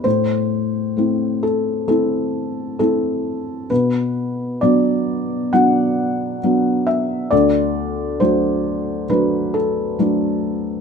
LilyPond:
<<
  \new Staff \with { instrumentName = "Felt piano" } { \time 4/4 \key a \dorian \tempo 4 = 67 c''4. a'8 a'4 a'4 | b'4 d''4 fis''4. e''8 | d''4 c''4 b'8 a'8 r4 | }
  \new Staff \with { instrumentName = "Felt piano" } { \time 4/4 \key a \dorian a,4 <a c' e'>4 <a c' e'>4 <a c' e'>4 | b,4 <fis b d'>4 <fis b d'>4 <fis b d'>4 | d,4 <fis a d'>4 <fis a d'>4 <fis a d'>4 | }
>>